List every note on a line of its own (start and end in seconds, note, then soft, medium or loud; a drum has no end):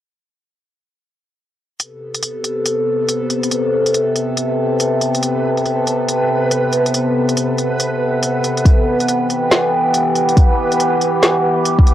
1.80 8.62 C3 medium
1.80 11.94 B3 medium
1.80 8.62 A4 medium
1.80 11.94 B4 medium
1.80 closed hi-hat medium
2.14 closed hi-hat medium
2.23 closed hi-hat medium
2.44 closed hi-hat medium
2.66 closed hi-hat medium
3.08 closed hi-hat medium
3.30 closed hi-hat medium
3.43 closed hi-hat medium
3.51 closed hi-hat medium
3.86 closed hi-hat soft
3.94 closed hi-hat medium
4.16 closed hi-hat soft
4.37 closed hi-hat medium
4.80 closed hi-hat medium
5.01 closed hi-hat soft
5.15 closed hi-hat medium
5.23 closed hi-hat medium
5.57 closed hi-hat soft
5.65 closed hi-hat medium
5.87 closed hi-hat soft
6.08 closed hi-hat medium
6.51 closed hi-hat medium
6.73 closed hi-hat soft
6.86 closed hi-hat soft
6.94 closed hi-hat medium
7.29 closed hi-hat soft
7.37 closed hi-hat medium
7.58 closed hi-hat soft
7.80 closed hi-hat medium
8.23 closed hi-hat medium
8.44 closed hi-hat soft
8.57 closed hi-hat soft
8.65 11.94 E3 medium
8.65 11.94 G4 medium
8.65 kick loud
8.65 closed hi-hat medium
9.00 closed hi-hat soft
9.09 closed hi-hat medium
9.30 closed hi-hat soft
9.51 snare loud
9.51 closed hi-hat medium
9.94 closed hi-hat medium
10.16 closed hi-hat soft
10.29 closed hi-hat soft
10.37 kick loud
10.37 closed hi-hat medium
10.72 closed hi-hat soft
10.80 closed hi-hat medium
11.01 closed hi-hat soft
11.23 snare loud
11.23 closed hi-hat medium
11.65 closed hi-hat medium
11.79 kick loud
11.87 closed hi-hat medium